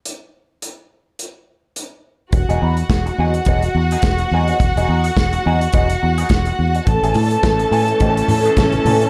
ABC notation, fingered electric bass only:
X:1
M:4/4
L:1/16
Q:"Swing 16ths" 1/4=106
K:E
V:1 name="Fingered electric bass" clef=bass
z16 | E,,, E,,, E,,2 E,,,2 E,,2 E,,,2 E,,2 E,,,2 E,,2 | E,,, E,,, E,,2 E,,,2 E,,2 E,,,2 E,,2 E,,,2 E,,2 | A,,, A,,, A,,2 A,,,2 A,,2 A,,,2 A,,2 A,,,2 A,,2 |]